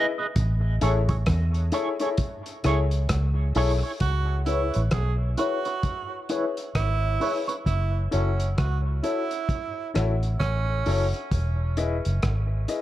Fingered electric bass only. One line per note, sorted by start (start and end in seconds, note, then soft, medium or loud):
0.37 0.78 A1 loud
0.82 1.24 A1 medium
1.29 1.70 E2 medium
2.65 3.06 C#2 medium
3.11 3.52 C#2 loud
3.56 3.81 B1 loud
4.02 4.70 C#2 medium
4.76 4.92 A1 medium
4.93 5.35 B1 medium
6.76 7.17 G#1 medium
7.67 8.08 F#1 medium
8.14 8.55 F#1 medium
8.59 9.00 C#2 medium
9.96 10.37 A1 medium
10.41 10.82 A1 medium
10.87 11.12 F#1 medium
11.32 12.01 E1 medium
12.06 12.22 F#1 medium
12.24 12.65 G#1 medium